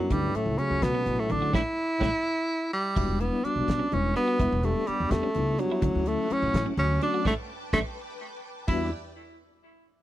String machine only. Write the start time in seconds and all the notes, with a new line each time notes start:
5.83 C#4 F#5 A5 D6
7.25 B4 G5
8.69 E4 G4 B4 D5 G5